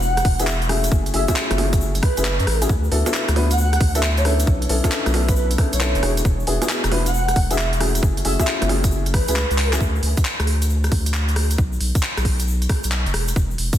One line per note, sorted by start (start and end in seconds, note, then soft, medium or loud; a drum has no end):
0.00 0.22 E1 loud
0.00 0.25 F#5 loud
0.00 shaker medium
0.17 cross-stick medium
0.17 closed hi-hat medium
0.17 shaker soft
0.25 0.89 E1 loud
0.25 kick loud
0.25 open hi-hat loud
0.39 0.46 B3 loud
0.39 0.46 D4 medium
0.39 0.46 E4 medium
0.39 0.46 F#4 medium
0.39 0.46 G#4 loud
0.39 0.45 E5 medium
0.39 closed hi-hat medium
0.39 shaker medium
0.47 0.57 E5 medium
0.47 clap loud
0.47 shaker medium
0.62 closed hi-hat soft
0.62 shaker soft
0.69 1.12 A3 medium
0.69 1.12 C#4 medium
0.69 1.12 E4 medium
0.69 1.12 F#4 medium
0.69 1.12 G#4 loud
0.69 cross-stick medium
0.69 open hi-hat loud
0.84 closed hi-hat medium
0.84 shaker medium
0.92 1.11 F#1 loud
0.92 kick loud
1.06 closed hi-hat soft
1.06 shaker soft
1.14 1.25 F#1 medium
1.14 1.25 A3 medium
1.14 1.25 C#4 medium
1.14 1.25 E4 medium
1.14 1.25 F#4 medium
1.14 1.25 G#4 medium
1.14 1.23 E5 medium
1.14 open hi-hat loud
1.28 1.35 A3 medium
1.28 1.35 C#4 medium
1.28 1.35 E4 medium
1.28 1.35 F#4 medium
1.28 1.35 G#4 loud
1.28 1.33 E5 medium
1.28 kick medium
1.28 closed hi-hat medium
1.28 high bongo medium
1.28 shaker medium
1.36 1.54 A3 medium
1.36 1.54 C#4 medium
1.36 1.54 E4 medium
1.36 1.54 F#4 medium
1.36 1.54 G#4 loud
1.36 clap loud
1.36 shaker medium
1.51 2.00 F#1 loud
1.51 cross-stick medium
1.51 closed hi-hat medium
1.51 high bongo medium
1.51 shaker soft
1.58 2.01 A3 medium
1.58 2.01 C#4 medium
1.58 2.01 E4 medium
1.58 2.01 F#4 medium
1.58 2.01 G#4 medium
1.58 open hi-hat loud
1.58 high bongo medium
1.73 kick loud
1.73 closed hi-hat medium
1.73 shaker medium
1.81 shaker medium
1.95 closed hi-hat soft
1.95 shaker soft
2.03 2.66 B4 medium
2.03 kick loud
2.03 cross-stick medium
2.03 open hi-hat medium
2.17 2.39 F#1 medium
2.17 2.24 A3 medium
2.17 2.24 C#4 medium
2.17 2.24 E4 medium
2.17 2.24 F#4 medium
2.17 2.24 G#4 medium
2.17 closed hi-hat medium
2.17 shaker medium
2.25 clap loud
2.40 2.46 F#2 medium
2.40 closed hi-hat soft
2.40 shaker soft
2.47 2.66 A1 medium
2.47 cross-stick medium
2.47 open hi-hat loud
2.62 2.69 A3 medium
2.62 2.69 C#4 medium
2.62 2.68 E4 medium
2.62 2.69 F#4 medium
2.62 2.69 G#4 loud
2.62 closed hi-hat medium
2.62 shaker medium
2.69 2.88 D2 loud
2.69 kick loud
2.84 shaker soft
2.92 3.03 D2 medium
2.92 3.03 B3 medium
2.92 3.03 D4 medium
2.92 3.03 E4 medium
2.92 3.03 F#4 medium
2.92 3.03 A4 loud
2.92 open hi-hat loud
3.06 3.12 B3 medium
3.06 3.12 D4 medium
3.06 3.12 E4 medium
3.06 3.12 F#4 medium
3.06 3.12 A4 loud
3.06 closed hi-hat medium
3.06 high bongo medium
3.06 shaker medium
3.14 3.27 B3 medium
3.14 3.27 D4 medium
3.14 3.27 E4 medium
3.14 3.27 F#4 medium
3.14 3.27 A4 medium
3.14 clap loud
3.14 shaker medium
3.28 3.78 D2 loud
3.28 cross-stick medium
3.28 closed hi-hat medium
3.28 shaker soft
3.36 3.49 B3 medium
3.36 3.49 D4 medium
3.36 3.49 E4 medium
3.36 3.49 F#4 medium
3.36 3.49 B4 medium
3.36 open hi-hat loud
3.36 high bongo medium
3.51 3.81 F#5 loud
3.51 closed hi-hat medium
3.51 shaker medium
3.58 shaker medium
3.73 cross-stick soft
3.73 closed hi-hat medium
3.73 shaker soft
3.81 4.45 D2 loud
3.81 kick loud
3.81 open hi-hat loud
3.95 4.02 B3 loud
3.95 4.02 D4 medium
3.95 4.02 E4 medium
3.95 4.02 F#4 medium
3.95 4.02 A4 loud
3.95 4.00 E5 medium
3.95 closed hi-hat medium
3.95 shaker medium
4.03 4.12 E5 medium
4.03 clap loud
4.03 shaker medium
4.17 4.22 C#5 medium
4.17 closed hi-hat soft
4.17 shaker soft
4.25 4.68 B3 medium
4.25 4.68 C#4 medium
4.25 4.68 D4 medium
4.25 4.68 E4 medium
4.25 4.68 A4 medium
4.25 4.34 C#5 medium
4.25 cross-stick medium
4.25 open hi-hat loud
4.40 closed hi-hat medium
4.40 shaker medium
4.47 4.66 B1 loud
4.47 kick loud
4.62 closed hi-hat soft
4.62 shaker soft
4.69 4.81 B1 medium
4.69 4.81 B3 medium
4.69 4.81 C#4 medium
4.69 4.81 D4 medium
4.69 4.81 E4 medium
4.69 4.81 A4 medium
4.69 open hi-hat loud
4.84 4.90 B3 loud
4.84 4.90 C#4 medium
4.84 4.90 D4 medium
4.84 4.90 E4 medium
4.84 4.90 A4 loud
4.84 kick medium
4.84 closed hi-hat medium
4.84 high bongo medium
4.84 shaker medium
4.91 5.10 B3 medium
4.91 5.10 C#4 medium
4.91 5.10 D4 medium
4.91 5.10 E4 medium
4.91 5.10 A4 loud
4.91 clap loud
4.91 shaker medium
5.06 5.56 B1 loud
5.06 cross-stick medium
5.06 closed hi-hat medium
5.06 high bongo medium
5.06 shaker soft
5.14 5.57 B3 medium
5.14 5.57 C#4 medium
5.14 5.57 D4 medium
5.14 5.57 E4 medium
5.14 5.57 A4 medium
5.14 open hi-hat loud
5.14 high bongo medium
5.29 5.33 B4 medium
5.29 kick loud
5.29 closed hi-hat medium
5.29 shaker medium
5.36 5.45 B4 medium
5.36 shaker medium
5.51 closed hi-hat medium
5.51 shaker soft
5.58 5.71 B3 medium
5.58 5.71 C#4 medium
5.58 5.71 D4 medium
5.58 5.71 E4 medium
5.58 5.71 A4 medium
5.58 kick loud
5.58 cross-stick medium
5.58 open hi-hat loud
5.73 5.94 B1 medium
5.73 6.09 C#5 medium
5.73 closed hi-hat medium
5.73 shaker medium
5.80 6.01 B3 medium
5.80 6.01 C#4 medium
5.80 6.01 D4 medium
5.80 6.01 E4 medium
5.80 6.01 A4 loud
5.80 clap loud
5.80 shaker medium
5.95 6.01 F#1 medium
5.95 closed hi-hat soft
5.95 shaker soft
6.03 6.22 E1 medium
6.03 6.21 B3 medium
6.03 6.21 D4 medium
6.03 6.21 E4 medium
6.03 6.21 F#4 medium
6.03 6.21 G#4 loud
6.03 cross-stick medium
6.03 open hi-hat loud
6.17 closed hi-hat medium
6.17 shaker medium
6.25 6.44 E1 loud
6.25 kick loud
6.25 shaker medium
6.40 shaker soft
6.47 6.59 E1 medium
6.47 6.58 B3 medium
6.47 6.58 D4 medium
6.47 6.58 E4 medium
6.47 6.58 F#4 medium
6.47 6.58 G#4 loud
6.47 open hi-hat loud
6.62 6.68 B3 medium
6.62 6.68 D4 medium
6.62 6.68 E4 medium
6.62 6.68 F#4 medium
6.62 6.68 G#4 medium
6.62 closed hi-hat medium
6.62 high bongo medium
6.62 shaker medium
6.69 6.82 B3 medium
6.69 6.83 D4 medium
6.69 6.82 E4 medium
6.69 6.82 F#4 medium
6.69 6.83 G#4 medium
6.69 clap loud
6.69 shaker medium
6.84 7.34 E1 loud
6.84 cross-stick medium
6.84 closed hi-hat medium
6.84 shaker soft
6.92 7.05 B3 medium
6.92 7.05 D4 medium
6.92 7.05 E4 medium
6.92 7.05 F#4 medium
6.92 7.05 B4 loud
6.92 open hi-hat loud
6.92 high bongo medium
7.06 7.36 F#5 loud
7.06 closed hi-hat medium
7.06 shaker medium
7.14 shaker medium
7.28 cross-stick soft
7.28 closed hi-hat medium
7.28 shaker soft
7.36 8.00 E1 loud
7.36 kick loud
7.36 open hi-hat loud
7.51 7.57 B3 loud
7.51 7.57 D4 medium
7.51 7.57 E4 medium
7.51 7.57 F#4 medium
7.51 7.57 G#4 loud
7.51 7.56 E5 medium
7.51 closed hi-hat medium
7.51 shaker medium
7.58 7.68 E5 medium
7.58 clap loud
7.73 closed hi-hat soft
7.73 shaker soft
7.80 8.23 A3 medium
7.80 8.23 C#4 medium
7.80 8.23 E4 medium
7.80 8.23 F#4 medium
7.80 8.23 G#4 medium
7.80 cross-stick medium
7.80 open hi-hat loud
7.95 closed hi-hat medium
7.95 shaker medium
8.03 8.22 F#1 loud
8.03 kick loud
8.03 shaker medium
8.17 closed hi-hat soft
8.17 shaker soft
8.25 8.37 F#1 medium
8.25 8.36 A3 medium
8.25 8.36 C#4 medium
8.25 8.36 E4 medium
8.25 8.36 F#4 medium
8.25 8.36 G#4 medium
8.25 8.34 E5 medium
8.25 open hi-hat loud
8.40 8.46 A3 loud
8.40 8.46 C#4 medium
8.40 8.46 E4 medium
8.40 8.46 F#4 medium
8.40 8.46 G#4 loud
8.40 8.44 E5 medium
8.40 kick medium
8.40 closed hi-hat medium
8.40 high bongo medium
8.40 shaker medium
8.47 8.65 A3 medium
8.47 8.65 C#4 medium
8.47 8.65 E4 medium
8.47 8.65 F#4 medium
8.47 8.65 G#4 loud
8.47 clap loud
8.61 9.15 F#1 loud
8.61 cross-stick medium
8.61 closed hi-hat medium
8.61 high bongo medium
8.61 shaker soft
8.69 9.12 A3 medium
8.69 9.12 C#4 medium
8.69 9.12 E4 medium
8.69 9.12 F#4 medium
8.69 9.12 G#4 medium
8.69 open hi-hat loud
8.69 high bongo medium
8.84 kick loud
8.84 closed hi-hat medium
8.84 shaker medium
8.91 shaker medium
9.06 closed hi-hat medium
9.06 shaker soft
9.14 9.25 A1 medium
9.14 9.78 B4 medium
9.14 kick loud
9.14 cross-stick medium
9.14 open hi-hat loud
9.28 9.45 C#2 medium
9.28 9.35 A3 medium
9.28 9.35 C#4 medium
9.28 9.35 E4 medium
9.28 9.35 F#4 medium
9.28 9.35 G#4 medium
9.28 closed hi-hat medium
9.28 shaker medium
9.36 clap loud
9.36 shaker medium
9.51 9.78 C#2 medium
9.51 closed hi-hat soft
9.51 shaker soft
9.58 clap medium
9.58 open hi-hat loud
9.73 9.80 A3 medium
9.73 9.80 C#4 medium
9.73 9.80 E4 medium
9.73 9.80 F#4 medium
9.73 9.80 G#4 loud
9.73 clap loud
9.73 closed hi-hat medium
9.73 shaker medium
9.81 10.00 D2 loud
9.81 kick loud
9.81 shaker medium
9.95 shaker soft
10.03 10.14 D2 medium
10.03 open hi-hat loud
10.17 kick loud
10.17 closed hi-hat medium
10.17 shaker medium
10.25 clap loud
10.25 shaker medium
10.39 10.89 D2 loud
10.39 cross-stick medium
10.39 closed hi-hat medium
10.39 shaker soft
10.47 open hi-hat loud
10.62 closed hi-hat medium
10.62 shaker medium
10.69 shaker medium
10.84 cross-stick medium
10.84 closed hi-hat soft
10.84 shaker soft
10.92 11.56 D2 loud
10.92 kick loud
10.92 open hi-hat loud
11.06 closed hi-hat medium
11.06 shaker medium
11.14 clap loud
11.14 shaker medium
11.29 closed hi-hat soft
11.29 shaker soft
11.36 cross-stick medium
11.36 open hi-hat loud
11.50 closed hi-hat medium
11.50 shaker medium
11.58 11.77 B1 loud
11.58 kick loud
11.73 shaker soft
11.81 11.92 B1 medium
11.81 open hi-hat loud
11.95 kick loud
11.95 closed hi-hat medium
11.95 shaker medium
12.03 clap loud
12.17 12.67 B1 loud
12.17 cross-stick medium
12.17 closed hi-hat soft
12.17 shaker soft
12.25 kick medium
12.25 open hi-hat loud
12.39 closed hi-hat medium
12.39 shaker medium
12.48 shaker medium
12.62 closed hi-hat soft
12.62 shaker soft
12.69 kick loud
12.69 cross-stick medium
12.69 open hi-hat loud
12.84 13.06 B1 medium
12.84 closed hi-hat medium
12.84 shaker medium
12.91 clap loud
12.91 shaker medium
13.06 13.12 F#1 medium
13.06 closed hi-hat soft
13.06 shaker soft
13.14 13.33 E1 medium
13.14 cross-stick medium
13.14 open hi-hat loud
13.28 closed hi-hat medium
13.28 shaker medium
13.36 13.55 E1 loud
13.36 kick loud
13.36 shaker medium
13.51 shaker soft
13.58 13.70 E1 medium
13.58 open hi-hat loud
13.73 kick loud
13.73 closed hi-hat medium
13.73 shaker medium